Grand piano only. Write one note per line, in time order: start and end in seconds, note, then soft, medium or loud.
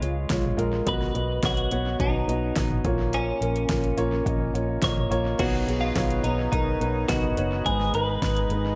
0.00 0.89 C#3 medium
0.00 0.29 G#3 medium
0.00 0.30 F4 medium
0.00 0.88 B4 medium
0.00 0.02 C#5 medium
0.00 0.23 C#5 medium
0.00 0.87 D#5 medium
0.29 0.51 G#3 medium
0.29 0.51 F4 medium
0.29 0.52 C#5 medium
0.57 0.79 G#3 loud
0.57 0.79 F4 medium
0.57 0.80 A#4 loud
0.86 1.68 B2 medium
0.86 1.08 B3 medium
0.86 1.08 F#4 medium
0.86 1.08 D#5 medium
1.14 1.36 B3 medium
1.14 1.36 F#4 medium
1.14 1.36 D#5 medium
1.43 1.64 B3 medium
1.43 1.65 F#4 medium
1.43 1.65 C#5 medium
1.71 1.93 B3 medium
1.71 1.93 F#4 medium
1.71 1.93 C#5 medium
2.00 2.21 B3 medium
2.00 2.21 F#4 medium
2.00 2.22 D#5 medium
2.28 2.49 B3 medium
2.28 2.50 F#4 medium
2.28 2.50 D#5 medium
2.56 2.78 B3 medium
2.56 2.78 F#4 medium
2.56 2.78 D#5 medium
2.85 3.66 A#2 medium
2.85 3.30 A#3 medium
2.85 3.30 F4 medium
2.85 3.31 C#5 medium
3.41 3.62 A#3 medium
3.41 3.63 F4 medium
3.41 3.63 A#4 medium
3.69 3.91 A#3 medium
3.69 3.91 F4 medium
3.69 3.91 A#4 medium
3.97 4.19 A#3 medium
3.97 4.19 F4 medium
3.97 4.19 C#5 loud
4.25 4.47 A#3 medium
4.25 4.47 F4 medium
4.25 4.48 D#5 medium
4.54 4.76 A#3 medium
4.54 4.76 F4 medium
4.54 4.76 C#5 medium
4.82 5.04 A#3 medium
4.82 5.04 F4 medium
4.82 5.04 D#5 medium
5.10 5.32 A#3 medium
5.10 5.32 F4 medium
5.10 5.32 C#5 loud
5.39 6.20 B2 medium
5.39 5.60 B3 medium
5.39 5.61 D#4 medium
5.39 5.61 C#5 medium
5.66 5.88 B3 medium
5.66 5.89 D#4 medium
5.66 5.89 G#4 medium
5.95 6.17 B3 medium
5.95 6.17 D#4 medium
5.95 6.18 C#5 medium
6.23 6.45 B3 medium
6.23 6.46 D#4 medium
6.23 6.46 C#5 medium
6.52 6.74 B3 medium
6.52 6.74 D#4 medium
6.52 6.74 A#4 medium
6.80 7.02 B3 medium
6.80 7.02 D#4 medium
6.80 7.03 B4 medium
7.08 7.30 B3 medium
7.08 7.30 D#4 medium
7.08 7.30 D#5 medium
7.37 7.59 B3 medium
7.37 7.59 D#4 medium
7.37 7.59 C#5 medium
7.65 8.47 G#2 medium
7.65 7.87 G#3 medium
7.65 7.87 D#4 medium
7.65 7.88 B4 medium
7.94 8.15 G#3 medium
7.94 8.16 D#4 medium
7.94 8.16 B4 medium
8.22 8.44 G#3 medium
8.22 8.44 D#4 medium
8.22 8.44 B4 medium
8.51 8.72 G#3 medium
8.51 8.73 D#4 medium
8.51 8.73 B4 medium